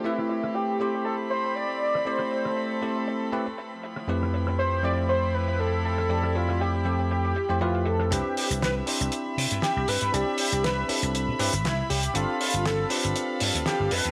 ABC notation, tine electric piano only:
X:1
M:4/4
L:1/16
Q:"Swing 16ths" 1/4=119
K:C
V:1 name="Tine electric piano"
[A,CEGB]6 [A,CEGc]8- [A,CEGc]2 | [A,CEGd]6 [A,CEGA]4 [A,CEGB] z4 z | [F,,A,CEGB]6 [F,,A,CEGc]8- [F,,A,CEGc]2 | [F,,A,CEGd]6 [F,,A,CEGA]4 z [F,,A,CEGc] [F,,A,CEGB]4 |
[CDEGB]6 [CDEGc]8- [CDEGc]2 | [CDEGd]6 [CDEGA]4 [CDEGB] z4 z | [CDFGA]6 [CDFGB]8- [CDFGB]2 |]